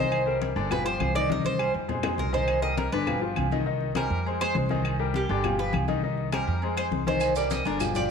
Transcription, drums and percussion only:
0.12 high conga, low agogo, claves
0.27 high conga
0.42 high conga, low agogo
0.56 high conga, low agogo
0.71 high conga, low conga, low agogo, claves
0.86 high conga
1.00 high conga, low agogo, claves
1.15 low agogo
1.30 high conga
1.45 high conga
1.59 low agogo, claves
1.89 low conga, low agogo
2.03 low conga, low agogo, claves
2.18 low conga
2.33 low conga, low agogo
2.48 high conga, low agogo, claves
2.63 high conga
2.78 high conga, low agogo
2.92 high conga, low agogo
3.07 high conga, low conga, low agogo, claves
3.22 high conga
3.36 high conga, low agogo, claves
3.51 high conga, low agogo
3.66 high conga
3.81 high conga
3.95 high conga, low agogo, claves
4.25 high conga, low agogo
4.40 high conga, low agogo, claves
4.55 high conga
4.69 high conga, low agogo
4.85 high conga, low agogo, claves
4.99 high conga
5.14 high conga, low agogo
5.29 high conga, low agogo
5.44 high conga, low conga, low agogo, claves
5.59 high conga
5.73 high conga, low agogo, claves
5.88 high conga, low agogo
6.03 high conga
6.18 high conga
6.32 high conga, low agogo, claves
6.62 high conga, low agogo
6.77 high conga, low agogo, claves
6.92 high conga
7.07 high conga, low agogo
7.20 high conga, low agogo, claves, maracas
7.36 high conga, maracas
7.50 high conga, low agogo, maracas
7.65 low agogo, maracas
7.80 high conga, low conga, low agogo, claves, maracas
7.95 high conga, low conga, maracas

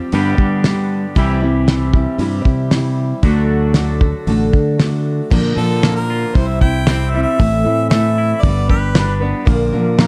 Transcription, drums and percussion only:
0.12 open hi-hat
0.38 kick
0.64 snare, open hi-hat
1.16 kick, open hi-hat
1.68 snare, open hi-hat
1.94 kick
2.19 open hi-hat
2.45 kick
2.71 snare, open hi-hat
3.23 kick, open hi-hat
3.74 snare, open hi-hat
4.01 kick
4.27 open hi-hat
4.53 kick
4.80 snare, open hi-hat
5.31 kick, crash
5.83 snare, open hi-hat
6.35 kick, open hi-hat
6.61 kick
6.87 snare, open hi-hat
7.40 kick, open hi-hat
7.91 snare, open hi-hat
8.43 kick, open hi-hat
8.69 kick
8.95 snare, open hi-hat
9.47 kick, open hi-hat
9.99 snare, open hi-hat

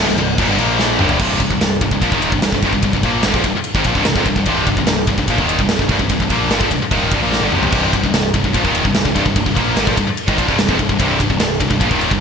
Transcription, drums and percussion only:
0.18 crash
0.38 kick, crash
0.58 crash
0.79 snare
0.99 mid tom
1.09 floor tom
1.19 kick, crash
1.40 kick, ride
1.51 kick
1.61 snare, ride
1.81 kick, ride
1.91 kick
2.02 kick, ride
2.12 kick
2.22 ride
2.32 kick
2.42 snare, ride
2.52 kick
2.62 kick, ride
2.73 kick
2.82 kick, ride
2.93 kick
3.03 kick, ride
3.23 snare, ride
3.34 kick
3.44 kick, ride
3.64 ride
3.75 kick
3.84 kick, ride
3.95 kick
4.05 snare, ride
4.16 kick
4.25 kick, ride
4.36 kick
4.45 kick, ride
4.67 kick, ride
4.77 kick
4.87 snare, ride
5.07 kick, ride
5.18 kick
5.28 kick, ride
5.38 kick
5.49 ride
5.59 kick
5.69 snare, ride
5.79 kick
5.89 kick, ride
5.99 kick
6.09 kick, ride
6.20 kick
6.30 kick, ride
6.51 snare, ride
6.61 kick
6.71 kick, ride
6.91 kick, ride
7.11 kick, ride
7.32 snare
7.52 mid tom
7.63 floor tom
7.72 kick, crash
7.93 kick, ride
8.04 kick
8.14 snare, ride
8.34 kick, ride
8.44 kick
8.54 kick, ride
8.65 kick
8.75 ride
8.85 kick
8.94 snare, ride
9.05 kick
9.16 kick, ride
9.26 kick
9.36 kick, ride
9.46 kick
9.57 kick, ride
9.77 snare, ride
9.87 kick
9.97 kick, ride
10.17 ride
10.28 kick
10.38 kick, ride
10.48 kick
10.58 snare, ride
10.69 kick
10.79 kick, ride
10.89 kick
11.00 kick, ride
11.20 kick, ride
11.30 kick
11.40 snare, ride
11.61 kick, ride
11.71 kick
11.81 kick, ride
11.91 kick
12.01 ride
12.11 kick

